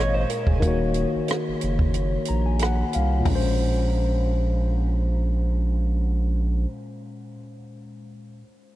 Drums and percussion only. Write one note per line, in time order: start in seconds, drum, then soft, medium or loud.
0.30 closed hi-hat medium
0.47 kick medium
0.62 kick loud
0.62 closed hi-hat medium
0.94 closed hi-hat medium
1.28 cross-stick loud
1.28 closed hi-hat medium
1.61 closed hi-hat medium
1.79 kick medium
1.94 closed hi-hat medium
2.25 closed hi-hat medium
2.59 cross-stick medium
2.59 closed hi-hat medium
2.93 closed hi-hat medium
3.25 kick medium
3.25 floor tom medium
3.25 open hi-hat medium